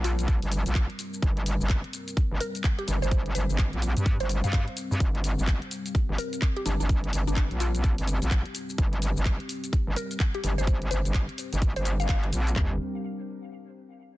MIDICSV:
0, 0, Header, 1, 5, 480
1, 0, Start_track
1, 0, Key_signature, -2, "minor"
1, 0, Tempo, 472441
1, 1244, Time_signature, 4, 2, 24, 8
1, 14398, End_track
2, 0, Start_track
2, 0, Title_t, "Synth pluck"
2, 0, Program_c, 0, 84
2, 45, Note_on_c, 0, 65, 93
2, 727, Note_off_c, 0, 65, 0
2, 2444, Note_on_c, 0, 70, 91
2, 2650, Note_off_c, 0, 70, 0
2, 2830, Note_on_c, 0, 67, 95
2, 2905, Note_off_c, 0, 67, 0
2, 3070, Note_on_c, 0, 72, 94
2, 3385, Note_off_c, 0, 72, 0
2, 3404, Note_on_c, 0, 72, 92
2, 3610, Note_off_c, 0, 72, 0
2, 4271, Note_on_c, 0, 72, 99
2, 4458, Note_off_c, 0, 72, 0
2, 4511, Note_on_c, 0, 77, 91
2, 4570, Note_off_c, 0, 77, 0
2, 4604, Note_on_c, 0, 77, 81
2, 4698, Note_off_c, 0, 77, 0
2, 6283, Note_on_c, 0, 70, 95
2, 6490, Note_off_c, 0, 70, 0
2, 6670, Note_on_c, 0, 67, 91
2, 6745, Note_off_c, 0, 67, 0
2, 6763, Note_on_c, 0, 62, 93
2, 6857, Note_off_c, 0, 62, 0
2, 6911, Note_on_c, 0, 62, 77
2, 6970, Note_off_c, 0, 62, 0
2, 7391, Note_on_c, 0, 62, 88
2, 7450, Note_off_c, 0, 62, 0
2, 7485, Note_on_c, 0, 62, 77
2, 7578, Note_off_c, 0, 62, 0
2, 7725, Note_on_c, 0, 65, 95
2, 8407, Note_off_c, 0, 65, 0
2, 10123, Note_on_c, 0, 70, 92
2, 10330, Note_off_c, 0, 70, 0
2, 10512, Note_on_c, 0, 67, 93
2, 10586, Note_off_c, 0, 67, 0
2, 10750, Note_on_c, 0, 72, 92
2, 11065, Note_off_c, 0, 72, 0
2, 11083, Note_on_c, 0, 72, 93
2, 11290, Note_off_c, 0, 72, 0
2, 11952, Note_on_c, 0, 72, 90
2, 12138, Note_off_c, 0, 72, 0
2, 12191, Note_on_c, 0, 77, 91
2, 12250, Note_off_c, 0, 77, 0
2, 12284, Note_on_c, 0, 77, 75
2, 12378, Note_off_c, 0, 77, 0
2, 14398, End_track
3, 0, Start_track
3, 0, Title_t, "Analog synth pad"
3, 0, Program_c, 1, 89
3, 0, Note_on_c, 1, 55, 75
3, 0, Note_on_c, 1, 60, 69
3, 0, Note_on_c, 1, 70, 87
3, 5072, Note_off_c, 1, 70, 0
3, 5083, Note_on_c, 1, 67, 86
3, 12723, Note_off_c, 1, 55, 0
3, 12723, Note_off_c, 1, 60, 0
3, 12752, Note_off_c, 1, 67, 0
3, 12765, Note_on_c, 1, 55, 70
3, 12765, Note_on_c, 1, 62, 65
3, 12765, Note_on_c, 1, 70, 82
3, 12987, Note_off_c, 1, 55, 0
3, 12987, Note_off_c, 1, 62, 0
3, 12988, Note_off_c, 1, 70, 0
3, 14398, End_track
4, 0, Start_track
4, 0, Title_t, "Wobble bass"
4, 0, Program_c, 2, 39
4, 0, Note_on_c, 2, 34, 97
4, 408, Note_off_c, 2, 34, 0
4, 432, Note_on_c, 2, 31, 100
4, 648, Note_off_c, 2, 31, 0
4, 672, Note_on_c, 2, 34, 96
4, 888, Note_off_c, 2, 34, 0
4, 1244, Note_on_c, 2, 31, 96
4, 1607, Note_off_c, 2, 31, 0
4, 1632, Note_on_c, 2, 31, 98
4, 1848, Note_off_c, 2, 31, 0
4, 2352, Note_on_c, 2, 31, 95
4, 2430, Note_off_c, 2, 31, 0
4, 2924, Note_on_c, 2, 31, 100
4, 3047, Note_off_c, 2, 31, 0
4, 3071, Note_on_c, 2, 31, 98
4, 3389, Note_off_c, 2, 31, 0
4, 3404, Note_on_c, 2, 31, 96
4, 3527, Note_off_c, 2, 31, 0
4, 3551, Note_on_c, 2, 31, 96
4, 3768, Note_off_c, 2, 31, 0
4, 3791, Note_on_c, 2, 34, 93
4, 4007, Note_off_c, 2, 34, 0
4, 4032, Note_on_c, 2, 43, 99
4, 4248, Note_off_c, 2, 43, 0
4, 4270, Note_on_c, 2, 31, 101
4, 4487, Note_off_c, 2, 31, 0
4, 4510, Note_on_c, 2, 43, 99
4, 4727, Note_off_c, 2, 43, 0
4, 4990, Note_on_c, 2, 43, 99
4, 5069, Note_off_c, 2, 43, 0
4, 5083, Note_on_c, 2, 31, 100
4, 5447, Note_off_c, 2, 31, 0
4, 5470, Note_on_c, 2, 31, 96
4, 5687, Note_off_c, 2, 31, 0
4, 6190, Note_on_c, 2, 31, 98
4, 6269, Note_off_c, 2, 31, 0
4, 6763, Note_on_c, 2, 31, 94
4, 6887, Note_off_c, 2, 31, 0
4, 6909, Note_on_c, 2, 31, 99
4, 7228, Note_off_c, 2, 31, 0
4, 7243, Note_on_c, 2, 31, 92
4, 7367, Note_off_c, 2, 31, 0
4, 7390, Note_on_c, 2, 31, 96
4, 7607, Note_off_c, 2, 31, 0
4, 7630, Note_on_c, 2, 34, 95
4, 8087, Note_off_c, 2, 34, 0
4, 8111, Note_on_c, 2, 31, 100
4, 8327, Note_off_c, 2, 31, 0
4, 8351, Note_on_c, 2, 34, 99
4, 8567, Note_off_c, 2, 34, 0
4, 8924, Note_on_c, 2, 31, 103
4, 9287, Note_off_c, 2, 31, 0
4, 9311, Note_on_c, 2, 31, 101
4, 9527, Note_off_c, 2, 31, 0
4, 10031, Note_on_c, 2, 31, 99
4, 10109, Note_off_c, 2, 31, 0
4, 10605, Note_on_c, 2, 31, 101
4, 10728, Note_off_c, 2, 31, 0
4, 10750, Note_on_c, 2, 31, 98
4, 11069, Note_off_c, 2, 31, 0
4, 11084, Note_on_c, 2, 31, 98
4, 11207, Note_off_c, 2, 31, 0
4, 11231, Note_on_c, 2, 31, 94
4, 11447, Note_off_c, 2, 31, 0
4, 11712, Note_on_c, 2, 31, 93
4, 11928, Note_off_c, 2, 31, 0
4, 11950, Note_on_c, 2, 31, 100
4, 12269, Note_off_c, 2, 31, 0
4, 12283, Note_on_c, 2, 31, 102
4, 12509, Note_off_c, 2, 31, 0
4, 12524, Note_on_c, 2, 34, 103
4, 12749, Note_off_c, 2, 34, 0
4, 12763, Note_on_c, 2, 31, 98
4, 12987, Note_off_c, 2, 31, 0
4, 14398, End_track
5, 0, Start_track
5, 0, Title_t, "Drums"
5, 44, Note_on_c, 9, 46, 111
5, 49, Note_on_c, 9, 82, 70
5, 146, Note_off_c, 9, 46, 0
5, 151, Note_off_c, 9, 82, 0
5, 191, Note_on_c, 9, 42, 54
5, 196, Note_on_c, 9, 82, 44
5, 284, Note_on_c, 9, 36, 123
5, 285, Note_off_c, 9, 42, 0
5, 285, Note_on_c, 9, 42, 84
5, 289, Note_off_c, 9, 82, 0
5, 289, Note_on_c, 9, 82, 33
5, 386, Note_off_c, 9, 36, 0
5, 386, Note_off_c, 9, 42, 0
5, 391, Note_off_c, 9, 82, 0
5, 431, Note_on_c, 9, 46, 67
5, 524, Note_off_c, 9, 46, 0
5, 524, Note_on_c, 9, 46, 106
5, 529, Note_on_c, 9, 82, 75
5, 626, Note_off_c, 9, 46, 0
5, 631, Note_off_c, 9, 82, 0
5, 671, Note_on_c, 9, 42, 52
5, 676, Note_on_c, 9, 82, 43
5, 763, Note_on_c, 9, 39, 122
5, 764, Note_off_c, 9, 42, 0
5, 764, Note_on_c, 9, 36, 121
5, 764, Note_on_c, 9, 42, 78
5, 769, Note_off_c, 9, 82, 0
5, 769, Note_on_c, 9, 82, 33
5, 864, Note_off_c, 9, 39, 0
5, 866, Note_off_c, 9, 36, 0
5, 866, Note_off_c, 9, 42, 0
5, 870, Note_off_c, 9, 82, 0
5, 912, Note_on_c, 9, 42, 40
5, 1005, Note_on_c, 9, 46, 111
5, 1010, Note_on_c, 9, 82, 76
5, 1013, Note_off_c, 9, 42, 0
5, 1106, Note_off_c, 9, 46, 0
5, 1111, Note_off_c, 9, 82, 0
5, 1156, Note_on_c, 9, 82, 43
5, 1244, Note_on_c, 9, 36, 127
5, 1245, Note_on_c, 9, 42, 77
5, 1250, Note_off_c, 9, 82, 0
5, 1250, Note_on_c, 9, 82, 33
5, 1346, Note_off_c, 9, 36, 0
5, 1346, Note_off_c, 9, 42, 0
5, 1351, Note_off_c, 9, 82, 0
5, 1391, Note_on_c, 9, 42, 37
5, 1485, Note_on_c, 9, 46, 113
5, 1490, Note_on_c, 9, 82, 76
5, 1493, Note_off_c, 9, 42, 0
5, 1586, Note_off_c, 9, 46, 0
5, 1591, Note_off_c, 9, 82, 0
5, 1636, Note_on_c, 9, 82, 41
5, 1723, Note_on_c, 9, 39, 122
5, 1724, Note_on_c, 9, 36, 127
5, 1724, Note_on_c, 9, 42, 78
5, 1729, Note_off_c, 9, 82, 0
5, 1729, Note_on_c, 9, 82, 33
5, 1825, Note_off_c, 9, 39, 0
5, 1826, Note_off_c, 9, 36, 0
5, 1826, Note_off_c, 9, 42, 0
5, 1831, Note_off_c, 9, 82, 0
5, 1871, Note_on_c, 9, 42, 35
5, 1964, Note_on_c, 9, 46, 105
5, 1969, Note_on_c, 9, 82, 72
5, 1973, Note_off_c, 9, 42, 0
5, 2066, Note_off_c, 9, 46, 0
5, 2071, Note_off_c, 9, 82, 0
5, 2111, Note_on_c, 9, 42, 54
5, 2116, Note_on_c, 9, 82, 43
5, 2204, Note_off_c, 9, 42, 0
5, 2204, Note_on_c, 9, 36, 125
5, 2204, Note_on_c, 9, 42, 80
5, 2209, Note_off_c, 9, 82, 0
5, 2209, Note_on_c, 9, 82, 33
5, 2306, Note_off_c, 9, 36, 0
5, 2306, Note_off_c, 9, 42, 0
5, 2311, Note_off_c, 9, 82, 0
5, 2444, Note_on_c, 9, 46, 113
5, 2449, Note_on_c, 9, 82, 71
5, 2545, Note_off_c, 9, 46, 0
5, 2550, Note_off_c, 9, 82, 0
5, 2591, Note_on_c, 9, 42, 52
5, 2596, Note_on_c, 9, 82, 44
5, 2683, Note_on_c, 9, 39, 120
5, 2684, Note_off_c, 9, 42, 0
5, 2684, Note_on_c, 9, 36, 127
5, 2684, Note_on_c, 9, 42, 79
5, 2689, Note_off_c, 9, 82, 0
5, 2689, Note_on_c, 9, 82, 33
5, 2784, Note_off_c, 9, 39, 0
5, 2785, Note_off_c, 9, 36, 0
5, 2786, Note_off_c, 9, 42, 0
5, 2790, Note_off_c, 9, 82, 0
5, 2831, Note_on_c, 9, 42, 39
5, 2924, Note_on_c, 9, 46, 117
5, 2929, Note_on_c, 9, 82, 76
5, 2932, Note_off_c, 9, 42, 0
5, 3025, Note_off_c, 9, 46, 0
5, 3030, Note_off_c, 9, 82, 0
5, 3076, Note_on_c, 9, 82, 43
5, 3164, Note_on_c, 9, 36, 122
5, 3164, Note_on_c, 9, 42, 75
5, 3169, Note_off_c, 9, 82, 0
5, 3169, Note_on_c, 9, 82, 33
5, 3266, Note_off_c, 9, 36, 0
5, 3266, Note_off_c, 9, 42, 0
5, 3270, Note_off_c, 9, 82, 0
5, 3311, Note_on_c, 9, 42, 35
5, 3403, Note_on_c, 9, 46, 107
5, 3408, Note_on_c, 9, 82, 77
5, 3412, Note_off_c, 9, 42, 0
5, 3505, Note_off_c, 9, 46, 0
5, 3510, Note_off_c, 9, 82, 0
5, 3555, Note_on_c, 9, 82, 42
5, 3642, Note_on_c, 9, 39, 124
5, 3643, Note_on_c, 9, 42, 75
5, 3644, Note_on_c, 9, 36, 126
5, 3648, Note_off_c, 9, 82, 0
5, 3648, Note_on_c, 9, 82, 33
5, 3744, Note_off_c, 9, 39, 0
5, 3745, Note_off_c, 9, 36, 0
5, 3745, Note_off_c, 9, 42, 0
5, 3750, Note_off_c, 9, 82, 0
5, 3790, Note_on_c, 9, 42, 35
5, 3883, Note_on_c, 9, 46, 104
5, 3888, Note_on_c, 9, 82, 71
5, 3891, Note_off_c, 9, 42, 0
5, 3985, Note_off_c, 9, 46, 0
5, 3989, Note_off_c, 9, 82, 0
5, 4030, Note_on_c, 9, 42, 52
5, 4035, Note_on_c, 9, 82, 43
5, 4123, Note_off_c, 9, 42, 0
5, 4123, Note_on_c, 9, 42, 77
5, 4124, Note_on_c, 9, 36, 123
5, 4128, Note_off_c, 9, 82, 0
5, 4128, Note_on_c, 9, 82, 33
5, 4225, Note_off_c, 9, 36, 0
5, 4225, Note_off_c, 9, 42, 0
5, 4230, Note_off_c, 9, 82, 0
5, 4270, Note_on_c, 9, 46, 61
5, 4363, Note_off_c, 9, 46, 0
5, 4363, Note_on_c, 9, 46, 106
5, 4368, Note_on_c, 9, 82, 74
5, 4465, Note_off_c, 9, 46, 0
5, 4470, Note_off_c, 9, 82, 0
5, 4510, Note_on_c, 9, 42, 52
5, 4515, Note_on_c, 9, 82, 42
5, 4602, Note_on_c, 9, 39, 118
5, 4603, Note_on_c, 9, 36, 124
5, 4604, Note_off_c, 9, 42, 0
5, 4604, Note_on_c, 9, 42, 73
5, 4609, Note_off_c, 9, 82, 0
5, 4609, Note_on_c, 9, 82, 31
5, 4704, Note_off_c, 9, 39, 0
5, 4705, Note_off_c, 9, 36, 0
5, 4705, Note_off_c, 9, 42, 0
5, 4710, Note_off_c, 9, 82, 0
5, 4751, Note_on_c, 9, 42, 36
5, 4844, Note_on_c, 9, 46, 112
5, 4849, Note_on_c, 9, 82, 74
5, 4852, Note_off_c, 9, 42, 0
5, 4945, Note_off_c, 9, 46, 0
5, 4950, Note_off_c, 9, 82, 0
5, 4995, Note_on_c, 9, 82, 43
5, 5083, Note_on_c, 9, 36, 122
5, 5084, Note_on_c, 9, 42, 79
5, 5089, Note_off_c, 9, 82, 0
5, 5089, Note_on_c, 9, 82, 34
5, 5185, Note_off_c, 9, 36, 0
5, 5185, Note_off_c, 9, 42, 0
5, 5190, Note_off_c, 9, 82, 0
5, 5230, Note_on_c, 9, 42, 35
5, 5324, Note_on_c, 9, 46, 102
5, 5329, Note_on_c, 9, 82, 78
5, 5332, Note_off_c, 9, 42, 0
5, 5426, Note_off_c, 9, 46, 0
5, 5431, Note_off_c, 9, 82, 0
5, 5475, Note_on_c, 9, 82, 45
5, 5562, Note_on_c, 9, 39, 120
5, 5563, Note_on_c, 9, 36, 116
5, 5563, Note_on_c, 9, 42, 74
5, 5568, Note_off_c, 9, 82, 0
5, 5568, Note_on_c, 9, 82, 35
5, 5664, Note_off_c, 9, 39, 0
5, 5665, Note_off_c, 9, 36, 0
5, 5665, Note_off_c, 9, 42, 0
5, 5670, Note_off_c, 9, 82, 0
5, 5710, Note_on_c, 9, 42, 36
5, 5804, Note_on_c, 9, 46, 103
5, 5809, Note_on_c, 9, 82, 76
5, 5812, Note_off_c, 9, 42, 0
5, 5905, Note_off_c, 9, 46, 0
5, 5910, Note_off_c, 9, 82, 0
5, 5951, Note_on_c, 9, 42, 53
5, 5956, Note_on_c, 9, 82, 44
5, 6043, Note_on_c, 9, 36, 120
5, 6044, Note_off_c, 9, 42, 0
5, 6044, Note_on_c, 9, 42, 80
5, 6049, Note_off_c, 9, 82, 0
5, 6049, Note_on_c, 9, 82, 34
5, 6145, Note_off_c, 9, 36, 0
5, 6145, Note_off_c, 9, 42, 0
5, 6150, Note_off_c, 9, 82, 0
5, 6283, Note_on_c, 9, 46, 109
5, 6288, Note_on_c, 9, 82, 78
5, 6385, Note_off_c, 9, 46, 0
5, 6390, Note_off_c, 9, 82, 0
5, 6430, Note_on_c, 9, 42, 51
5, 6435, Note_on_c, 9, 82, 45
5, 6522, Note_on_c, 9, 39, 110
5, 6523, Note_off_c, 9, 42, 0
5, 6523, Note_on_c, 9, 36, 126
5, 6523, Note_on_c, 9, 42, 78
5, 6528, Note_off_c, 9, 82, 0
5, 6528, Note_on_c, 9, 82, 33
5, 6624, Note_off_c, 9, 39, 0
5, 6625, Note_off_c, 9, 36, 0
5, 6625, Note_off_c, 9, 42, 0
5, 6630, Note_off_c, 9, 82, 0
5, 6670, Note_on_c, 9, 42, 38
5, 6763, Note_on_c, 9, 46, 107
5, 6768, Note_on_c, 9, 82, 80
5, 6772, Note_off_c, 9, 42, 0
5, 6865, Note_off_c, 9, 46, 0
5, 6870, Note_off_c, 9, 82, 0
5, 6915, Note_on_c, 9, 82, 44
5, 7003, Note_on_c, 9, 36, 116
5, 7004, Note_on_c, 9, 42, 80
5, 7009, Note_off_c, 9, 82, 0
5, 7009, Note_on_c, 9, 82, 35
5, 7105, Note_off_c, 9, 36, 0
5, 7106, Note_off_c, 9, 42, 0
5, 7110, Note_off_c, 9, 82, 0
5, 7151, Note_on_c, 9, 42, 37
5, 7244, Note_on_c, 9, 46, 104
5, 7249, Note_on_c, 9, 82, 79
5, 7253, Note_off_c, 9, 42, 0
5, 7346, Note_off_c, 9, 46, 0
5, 7351, Note_off_c, 9, 82, 0
5, 7395, Note_on_c, 9, 82, 45
5, 7483, Note_on_c, 9, 39, 114
5, 7484, Note_on_c, 9, 36, 124
5, 7484, Note_on_c, 9, 42, 81
5, 7489, Note_off_c, 9, 82, 0
5, 7489, Note_on_c, 9, 82, 36
5, 7584, Note_off_c, 9, 39, 0
5, 7585, Note_off_c, 9, 36, 0
5, 7586, Note_off_c, 9, 42, 0
5, 7591, Note_off_c, 9, 82, 0
5, 7631, Note_on_c, 9, 42, 36
5, 7724, Note_on_c, 9, 46, 104
5, 7729, Note_on_c, 9, 82, 80
5, 7732, Note_off_c, 9, 42, 0
5, 7826, Note_off_c, 9, 46, 0
5, 7831, Note_off_c, 9, 82, 0
5, 7871, Note_on_c, 9, 42, 51
5, 7876, Note_on_c, 9, 82, 45
5, 7964, Note_off_c, 9, 42, 0
5, 7964, Note_on_c, 9, 36, 110
5, 7964, Note_on_c, 9, 42, 81
5, 7969, Note_off_c, 9, 82, 0
5, 7969, Note_on_c, 9, 82, 36
5, 8065, Note_off_c, 9, 36, 0
5, 8066, Note_off_c, 9, 42, 0
5, 8070, Note_off_c, 9, 82, 0
5, 8111, Note_on_c, 9, 46, 60
5, 8204, Note_off_c, 9, 46, 0
5, 8204, Note_on_c, 9, 46, 100
5, 8209, Note_on_c, 9, 82, 84
5, 8306, Note_off_c, 9, 46, 0
5, 8311, Note_off_c, 9, 82, 0
5, 8351, Note_on_c, 9, 42, 53
5, 8356, Note_on_c, 9, 82, 49
5, 8442, Note_on_c, 9, 39, 113
5, 8444, Note_off_c, 9, 42, 0
5, 8444, Note_on_c, 9, 36, 115
5, 8444, Note_on_c, 9, 42, 75
5, 8449, Note_off_c, 9, 82, 0
5, 8449, Note_on_c, 9, 82, 36
5, 8544, Note_off_c, 9, 39, 0
5, 8545, Note_off_c, 9, 36, 0
5, 8545, Note_off_c, 9, 42, 0
5, 8550, Note_off_c, 9, 82, 0
5, 8590, Note_on_c, 9, 42, 38
5, 8684, Note_on_c, 9, 46, 109
5, 8689, Note_on_c, 9, 82, 83
5, 8692, Note_off_c, 9, 42, 0
5, 8785, Note_off_c, 9, 46, 0
5, 8790, Note_off_c, 9, 82, 0
5, 8836, Note_on_c, 9, 82, 49
5, 8924, Note_on_c, 9, 36, 121
5, 8924, Note_on_c, 9, 42, 82
5, 8929, Note_off_c, 9, 82, 0
5, 8929, Note_on_c, 9, 82, 35
5, 9025, Note_off_c, 9, 36, 0
5, 9026, Note_off_c, 9, 42, 0
5, 9031, Note_off_c, 9, 82, 0
5, 9070, Note_on_c, 9, 42, 37
5, 9164, Note_on_c, 9, 46, 100
5, 9169, Note_on_c, 9, 82, 83
5, 9172, Note_off_c, 9, 42, 0
5, 9266, Note_off_c, 9, 46, 0
5, 9271, Note_off_c, 9, 82, 0
5, 9316, Note_on_c, 9, 82, 46
5, 9403, Note_on_c, 9, 39, 121
5, 9404, Note_on_c, 9, 36, 120
5, 9404, Note_on_c, 9, 42, 83
5, 9409, Note_off_c, 9, 82, 0
5, 9409, Note_on_c, 9, 82, 35
5, 9505, Note_off_c, 9, 36, 0
5, 9505, Note_off_c, 9, 39, 0
5, 9506, Note_off_c, 9, 42, 0
5, 9511, Note_off_c, 9, 82, 0
5, 9551, Note_on_c, 9, 42, 38
5, 9644, Note_on_c, 9, 46, 102
5, 9649, Note_on_c, 9, 82, 79
5, 9653, Note_off_c, 9, 42, 0
5, 9746, Note_off_c, 9, 46, 0
5, 9750, Note_off_c, 9, 82, 0
5, 9791, Note_on_c, 9, 42, 53
5, 9796, Note_on_c, 9, 82, 50
5, 9884, Note_off_c, 9, 42, 0
5, 9884, Note_on_c, 9, 36, 112
5, 9884, Note_on_c, 9, 42, 85
5, 9889, Note_off_c, 9, 82, 0
5, 9889, Note_on_c, 9, 82, 37
5, 9985, Note_off_c, 9, 36, 0
5, 9986, Note_off_c, 9, 42, 0
5, 9991, Note_off_c, 9, 82, 0
5, 10124, Note_on_c, 9, 46, 101
5, 10129, Note_on_c, 9, 82, 81
5, 10226, Note_off_c, 9, 46, 0
5, 10231, Note_off_c, 9, 82, 0
5, 10271, Note_on_c, 9, 42, 58
5, 10276, Note_on_c, 9, 82, 47
5, 10363, Note_on_c, 9, 39, 117
5, 10364, Note_off_c, 9, 42, 0
5, 10364, Note_on_c, 9, 36, 114
5, 10364, Note_on_c, 9, 42, 78
5, 10369, Note_off_c, 9, 82, 0
5, 10369, Note_on_c, 9, 82, 35
5, 10465, Note_off_c, 9, 36, 0
5, 10465, Note_off_c, 9, 39, 0
5, 10466, Note_off_c, 9, 42, 0
5, 10471, Note_off_c, 9, 82, 0
5, 10510, Note_on_c, 9, 42, 40
5, 10603, Note_on_c, 9, 46, 102
5, 10608, Note_on_c, 9, 82, 85
5, 10612, Note_off_c, 9, 42, 0
5, 10705, Note_off_c, 9, 46, 0
5, 10710, Note_off_c, 9, 82, 0
5, 10755, Note_on_c, 9, 82, 46
5, 10844, Note_on_c, 9, 36, 119
5, 10844, Note_on_c, 9, 42, 82
5, 10848, Note_off_c, 9, 82, 0
5, 10848, Note_on_c, 9, 82, 34
5, 10945, Note_off_c, 9, 36, 0
5, 10945, Note_off_c, 9, 42, 0
5, 10950, Note_off_c, 9, 82, 0
5, 10991, Note_on_c, 9, 42, 40
5, 11083, Note_on_c, 9, 46, 99
5, 11088, Note_on_c, 9, 82, 80
5, 11092, Note_off_c, 9, 42, 0
5, 11185, Note_off_c, 9, 46, 0
5, 11190, Note_off_c, 9, 82, 0
5, 11230, Note_on_c, 9, 42, 39
5, 11235, Note_on_c, 9, 82, 47
5, 11323, Note_on_c, 9, 39, 126
5, 11324, Note_off_c, 9, 42, 0
5, 11324, Note_on_c, 9, 36, 124
5, 11324, Note_on_c, 9, 42, 86
5, 11329, Note_off_c, 9, 82, 0
5, 11329, Note_on_c, 9, 82, 36
5, 11424, Note_off_c, 9, 39, 0
5, 11425, Note_off_c, 9, 36, 0
5, 11426, Note_off_c, 9, 42, 0
5, 11431, Note_off_c, 9, 82, 0
5, 11471, Note_on_c, 9, 42, 40
5, 11563, Note_on_c, 9, 46, 98
5, 11568, Note_on_c, 9, 82, 80
5, 11572, Note_off_c, 9, 42, 0
5, 11665, Note_off_c, 9, 46, 0
5, 11670, Note_off_c, 9, 82, 0
5, 11711, Note_on_c, 9, 42, 55
5, 11715, Note_on_c, 9, 82, 47
5, 11803, Note_on_c, 9, 36, 114
5, 11804, Note_off_c, 9, 42, 0
5, 11804, Note_on_c, 9, 42, 83
5, 11809, Note_off_c, 9, 82, 0
5, 11809, Note_on_c, 9, 82, 37
5, 11905, Note_off_c, 9, 36, 0
5, 11906, Note_off_c, 9, 42, 0
5, 11911, Note_off_c, 9, 82, 0
5, 11951, Note_on_c, 9, 46, 59
5, 12044, Note_off_c, 9, 46, 0
5, 12044, Note_on_c, 9, 46, 99
5, 12049, Note_on_c, 9, 82, 82
5, 12145, Note_off_c, 9, 46, 0
5, 12150, Note_off_c, 9, 82, 0
5, 12190, Note_on_c, 9, 42, 57
5, 12195, Note_on_c, 9, 82, 46
5, 12282, Note_on_c, 9, 39, 120
5, 12283, Note_off_c, 9, 42, 0
5, 12283, Note_on_c, 9, 36, 119
5, 12283, Note_on_c, 9, 42, 84
5, 12288, Note_off_c, 9, 82, 0
5, 12288, Note_on_c, 9, 82, 35
5, 12384, Note_off_c, 9, 39, 0
5, 12385, Note_off_c, 9, 36, 0
5, 12385, Note_off_c, 9, 42, 0
5, 12390, Note_off_c, 9, 82, 0
5, 12430, Note_on_c, 9, 42, 43
5, 12524, Note_on_c, 9, 46, 101
5, 12528, Note_on_c, 9, 82, 82
5, 12532, Note_off_c, 9, 42, 0
5, 12625, Note_off_c, 9, 46, 0
5, 12630, Note_off_c, 9, 82, 0
5, 12671, Note_on_c, 9, 42, 37
5, 12676, Note_on_c, 9, 82, 48
5, 12763, Note_on_c, 9, 36, 106
5, 12763, Note_on_c, 9, 39, 93
5, 12763, Note_on_c, 9, 43, 113
5, 12772, Note_off_c, 9, 42, 0
5, 12777, Note_off_c, 9, 82, 0
5, 12865, Note_off_c, 9, 36, 0
5, 12865, Note_off_c, 9, 39, 0
5, 12865, Note_off_c, 9, 43, 0
5, 14398, End_track
0, 0, End_of_file